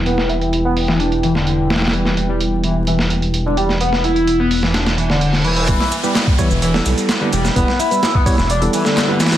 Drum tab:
RD |--------------------------------|--------------------------------|--------------------------------|----x-------x-------x-------x---|
HH |x---x-x-x---o---x-x-x---x---xxxx|x---x---x---x---x---x-x-x---x---|x---x-x-x---o---x-x-x---x---x-x-|x---x---x---x---x---x-x-x---x---|
SH |--------------------------------|--------------------------------|--------------------------------|x---x-x-x---x-x-x---x-x-x---x-x-|
CP |--------------------------------|--------------------------------|--------------------------------|--------x---------------x-------|
SD |--o-----------o-------o-----oooo|--o---------------o-----------o-|--o-----------o-o-o---o---o-----|--o-----o---------o-----o-----o-|
BD |--------------------------------|--------------------------------|--------------------------------|o---------o-o-------------------|

RD |----x-------x-------x-------x---|
HH |x---x-x-x---o---x-x-x---x---xxx-|
SH |x---x-x-x---x-x-x---x-x-x---x-x-|
CP |--------x---------------x-------|
SD |--o-----o-----o-------o-o---ooo-|
BD |o---------o-o-------------------|